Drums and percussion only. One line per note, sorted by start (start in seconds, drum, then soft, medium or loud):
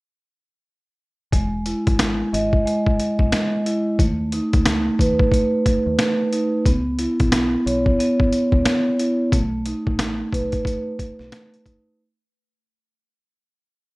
1.32 kick loud
1.32 closed hi-hat medium
1.66 closed hi-hat medium
1.87 kick loud
1.87 closed hi-hat medium
1.99 snare loud
1.99 snare medium
1.99 closed hi-hat medium
2.34 closed hi-hat medium
2.53 kick loud
2.67 closed hi-hat medium
2.87 kick medium
3.00 closed hi-hat medium
3.19 kick medium
3.32 snare loud
3.32 snare medium
3.32 closed hi-hat medium
3.66 closed hi-hat medium
3.99 kick loud
3.99 closed hi-hat medium
4.32 closed hi-hat medium
4.53 kick loud
4.53 closed hi-hat medium
4.66 snare loud
4.66 snare medium
4.66 closed hi-hat medium
4.99 kick medium
4.99 closed hi-hat medium
5.19 kick loud
5.32 kick loud
5.32 closed hi-hat medium
5.66 kick medium
5.66 closed hi-hat medium
5.99 snare loud
5.99 snare medium
5.99 closed hi-hat medium
6.33 closed hi-hat medium
6.66 kick loud
6.66 closed hi-hat medium
6.99 closed hi-hat medium
7.20 kick loud
7.20 closed hi-hat medium
7.32 snare loud
7.32 snare medium
7.32 closed hi-hat loud
7.67 closed hi-hat medium
7.86 kick loud
8.00 closed hi-hat medium
8.20 kick medium
8.33 closed hi-hat medium
8.52 kick medium
8.65 snare loud
8.65 snare medium
8.65 closed hi-hat medium
8.99 closed hi-hat medium
9.32 kick loud
9.32 closed hi-hat medium
9.66 closed hi-hat medium
9.87 kick loud
9.99 snare loud
9.99 snare medium
9.99 closed hi-hat medium
10.33 kick medium
10.33 closed hi-hat medium
10.52 kick loud
10.52 closed hi-hat medium
10.65 kick loud
10.65 closed hi-hat medium
10.99 kick medium
10.99 closed hi-hat medium
11.19 snare soft
11.32 snare loud
11.32 snare medium
11.32 closed hi-hat medium
11.54 closed hi-hat medium
11.66 kick medium
11.66 closed hi-hat medium